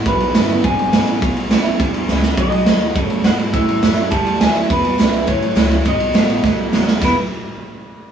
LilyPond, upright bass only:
\new Staff \with { instrumentName = "Upright bass" } { \clef bass \time 4/4 \key e \major \tempo 4 = 207 b,,4 g,,4 gis,,4 a,,4 | b,,4 dis,8 r8 e,4 cis,4 | b,,4 dis,4 fis,4 gis,4 | a,4 fis,4 e,4 dis,4 |
e,4 b,,4 a,,4 cis,4 | b,,4 a,,4 b,,4 dis,4 | e,8 r2. r8 | }